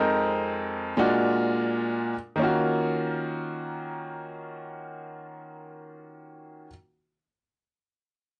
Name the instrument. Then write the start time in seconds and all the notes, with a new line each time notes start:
upright piano
Already playing: F2 G#3 C4 D#4 A#4
0.97 A#2 G#3 D4 F4 F#4
2.36 D#3 A#3 C#4
2.42 F4 F#4